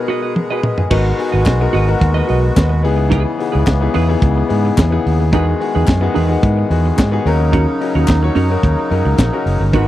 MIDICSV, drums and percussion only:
0, 0, Header, 1, 2, 480
1, 0, Start_track
1, 0, Tempo, 551978
1, 791, Time_signature, 4, 2, 24, 8
1, 8590, End_track
2, 0, Start_track
2, 0, Title_t, "Drums"
2, 313, Note_on_c, 9, 48, 63
2, 400, Note_off_c, 9, 48, 0
2, 551, Note_on_c, 9, 45, 94
2, 638, Note_off_c, 9, 45, 0
2, 675, Note_on_c, 9, 43, 92
2, 762, Note_off_c, 9, 43, 0
2, 788, Note_on_c, 9, 49, 101
2, 792, Note_on_c, 9, 36, 107
2, 875, Note_off_c, 9, 49, 0
2, 878, Note_off_c, 9, 36, 0
2, 1036, Note_on_c, 9, 46, 69
2, 1123, Note_off_c, 9, 46, 0
2, 1266, Note_on_c, 9, 39, 97
2, 1273, Note_on_c, 9, 36, 123
2, 1280, Note_on_c, 9, 38, 108
2, 1280, Note_on_c, 9, 42, 69
2, 1353, Note_off_c, 9, 39, 0
2, 1360, Note_off_c, 9, 36, 0
2, 1366, Note_off_c, 9, 42, 0
2, 1367, Note_off_c, 9, 38, 0
2, 1516, Note_on_c, 9, 46, 77
2, 1602, Note_off_c, 9, 46, 0
2, 1751, Note_on_c, 9, 36, 112
2, 1754, Note_on_c, 9, 42, 76
2, 1838, Note_off_c, 9, 36, 0
2, 1841, Note_off_c, 9, 42, 0
2, 1989, Note_on_c, 9, 46, 59
2, 2076, Note_off_c, 9, 46, 0
2, 2229, Note_on_c, 9, 42, 75
2, 2233, Note_on_c, 9, 36, 106
2, 2235, Note_on_c, 9, 39, 112
2, 2239, Note_on_c, 9, 38, 118
2, 2316, Note_off_c, 9, 42, 0
2, 2320, Note_off_c, 9, 36, 0
2, 2322, Note_off_c, 9, 39, 0
2, 2326, Note_off_c, 9, 38, 0
2, 2476, Note_on_c, 9, 46, 72
2, 2563, Note_off_c, 9, 46, 0
2, 2711, Note_on_c, 9, 36, 109
2, 2711, Note_on_c, 9, 42, 62
2, 2798, Note_off_c, 9, 36, 0
2, 2798, Note_off_c, 9, 42, 0
2, 2960, Note_on_c, 9, 46, 62
2, 3047, Note_off_c, 9, 46, 0
2, 3189, Note_on_c, 9, 39, 101
2, 3191, Note_on_c, 9, 36, 119
2, 3196, Note_on_c, 9, 38, 112
2, 3196, Note_on_c, 9, 42, 69
2, 3276, Note_off_c, 9, 39, 0
2, 3278, Note_off_c, 9, 36, 0
2, 3283, Note_off_c, 9, 38, 0
2, 3283, Note_off_c, 9, 42, 0
2, 3428, Note_on_c, 9, 46, 74
2, 3514, Note_off_c, 9, 46, 0
2, 3671, Note_on_c, 9, 36, 120
2, 3677, Note_on_c, 9, 42, 73
2, 3758, Note_off_c, 9, 36, 0
2, 3764, Note_off_c, 9, 42, 0
2, 3913, Note_on_c, 9, 46, 66
2, 4000, Note_off_c, 9, 46, 0
2, 4154, Note_on_c, 9, 36, 111
2, 4154, Note_on_c, 9, 42, 74
2, 4155, Note_on_c, 9, 39, 110
2, 4164, Note_on_c, 9, 38, 112
2, 4241, Note_off_c, 9, 36, 0
2, 4241, Note_off_c, 9, 42, 0
2, 4242, Note_off_c, 9, 39, 0
2, 4251, Note_off_c, 9, 38, 0
2, 4406, Note_on_c, 9, 46, 72
2, 4493, Note_off_c, 9, 46, 0
2, 4633, Note_on_c, 9, 36, 113
2, 4633, Note_on_c, 9, 42, 68
2, 4720, Note_off_c, 9, 36, 0
2, 4720, Note_off_c, 9, 42, 0
2, 4882, Note_on_c, 9, 46, 70
2, 4969, Note_off_c, 9, 46, 0
2, 5107, Note_on_c, 9, 39, 104
2, 5114, Note_on_c, 9, 36, 123
2, 5123, Note_on_c, 9, 42, 60
2, 5124, Note_on_c, 9, 38, 115
2, 5194, Note_off_c, 9, 39, 0
2, 5201, Note_off_c, 9, 36, 0
2, 5210, Note_off_c, 9, 38, 0
2, 5210, Note_off_c, 9, 42, 0
2, 5354, Note_on_c, 9, 46, 82
2, 5441, Note_off_c, 9, 46, 0
2, 5592, Note_on_c, 9, 36, 116
2, 5598, Note_on_c, 9, 42, 70
2, 5679, Note_off_c, 9, 36, 0
2, 5685, Note_off_c, 9, 42, 0
2, 5833, Note_on_c, 9, 46, 61
2, 5920, Note_off_c, 9, 46, 0
2, 6071, Note_on_c, 9, 42, 71
2, 6074, Note_on_c, 9, 36, 107
2, 6074, Note_on_c, 9, 39, 101
2, 6081, Note_on_c, 9, 38, 114
2, 6158, Note_off_c, 9, 42, 0
2, 6161, Note_off_c, 9, 36, 0
2, 6161, Note_off_c, 9, 39, 0
2, 6168, Note_off_c, 9, 38, 0
2, 6317, Note_on_c, 9, 46, 68
2, 6404, Note_off_c, 9, 46, 0
2, 6549, Note_on_c, 9, 42, 64
2, 6550, Note_on_c, 9, 36, 100
2, 6636, Note_off_c, 9, 42, 0
2, 6637, Note_off_c, 9, 36, 0
2, 6795, Note_on_c, 9, 46, 66
2, 6882, Note_off_c, 9, 46, 0
2, 7023, Note_on_c, 9, 39, 100
2, 7031, Note_on_c, 9, 36, 112
2, 7041, Note_on_c, 9, 38, 117
2, 7041, Note_on_c, 9, 42, 64
2, 7110, Note_off_c, 9, 39, 0
2, 7118, Note_off_c, 9, 36, 0
2, 7128, Note_off_c, 9, 38, 0
2, 7128, Note_off_c, 9, 42, 0
2, 7266, Note_on_c, 9, 46, 69
2, 7353, Note_off_c, 9, 46, 0
2, 7508, Note_on_c, 9, 36, 102
2, 7515, Note_on_c, 9, 42, 72
2, 7595, Note_off_c, 9, 36, 0
2, 7602, Note_off_c, 9, 42, 0
2, 7750, Note_on_c, 9, 46, 64
2, 7837, Note_off_c, 9, 46, 0
2, 7981, Note_on_c, 9, 42, 68
2, 7988, Note_on_c, 9, 36, 106
2, 7991, Note_on_c, 9, 38, 110
2, 7992, Note_on_c, 9, 39, 107
2, 8068, Note_off_c, 9, 42, 0
2, 8075, Note_off_c, 9, 36, 0
2, 8078, Note_off_c, 9, 38, 0
2, 8079, Note_off_c, 9, 39, 0
2, 8232, Note_on_c, 9, 46, 69
2, 8319, Note_off_c, 9, 46, 0
2, 8465, Note_on_c, 9, 36, 105
2, 8466, Note_on_c, 9, 42, 59
2, 8552, Note_off_c, 9, 36, 0
2, 8553, Note_off_c, 9, 42, 0
2, 8590, End_track
0, 0, End_of_file